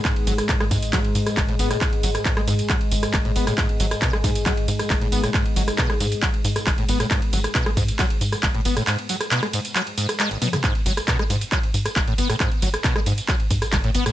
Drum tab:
RD |xxxxxxxxxxxxxxxx|xxxxxxxxxxxxxxxx|xxxxxxxxxxxxxxxx|xxxxxxxxxxxxxxxx|
HH |x-oxx-oxx-oxx-ox|x-oxx-oxx-oxx-ox|x-oxx-oxx-oxx-ox|x-oxx-oxx-oxx-ox|
TB |x-xxx-xxx-xxx-xx|--xxx-xxx-xxx-xx|x-xxx-xxx-xxx-xx|x-xxx-xxx-xxx-xx|
CP |x---x---x---x---|x---x---x---x---|x---x---x---x---|x---x---x---x---|
SD |---r-r-----r---r|---r-r-----r---r|---r-r-----r---r|---r-r-----r---r|
T1 |----------------|----------------|----------------|----------------|
T2 |----------------|----------------|----------------|----------------|
BD |o---o-o-o---o---|o---o---o---o---|o---o-o-o---o---|o---o---o---o---|

RD |xxxxxxxxxxxxxxxx|xxxxxxxxxxxxxxxx|xxxxxxxxxxxxxxxx|xxxxxxxxxxxxxxxx|
HH |x-oxx-oxx-oxx-ox|x-oxx-oxx-oxx-ox|x-oxx-oxx-oxx-ox|x-oxx-oxx-oxx-ox|
TB |x-xxx-xxx-xx--xx|x-xxx-xxx-xxx-xx|x-xxx-xxx-xxx-xx|x-xxx-xxx-xxx-xx|
CP |x---x---x---x---|x---x---x---x---|x---x---x---x---|x---x---x---x---|
SD |---r-r-----r---r|---r-r-----r---r|---r-r-----r---r|---r-r-----r---r|
T1 |----------------|--------------o-|----------------|----------------|
T2 |----------------|---------------o|----------------|----------------|
BD |o---o-o-o---o---|----------------|o---o---o---o---|o---o---o-o-o---|